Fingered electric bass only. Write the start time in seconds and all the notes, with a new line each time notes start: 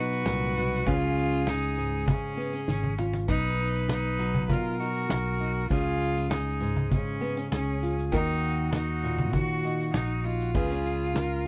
Already playing: B2
0.26 C2
0.87 C#2
2.08 C#3
2.68 G#1
3.29 B1
4.49 B2
5.10 B1
5.71 C#2
6.92 C#3
7.52 C#2
8.12 D#2
9.34 D#3
9.94 A#1
10.55 C#2